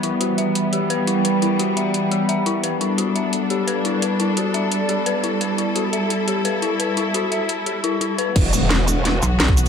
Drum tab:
CC |----------------|----------------|----------------|----------------|
HH |x-x-x-x-x-x-x-x-|x-x-x-x-x-x-x-x-|x-x-x-x-x-x-x-x-|x-x-x-x-x-x-x-x-|
SH |----------------|----------------|----------------|----------------|
SD |----------------|----------------|----------------|----------------|
BD |----------------|----------------|----------------|----------------|

CC |----------------|----------------|x---------------|
HH |x-x-x-x-x-x-x-x-|x-x-x-x-x-x-x-x-|x-x-x-x-x-x-x-x-|
SH |----------------|----------------|--x---x---x---x-|
SD |----------------|----------------|----o---o---o---|
BD |----------------|----------------|o------------o--|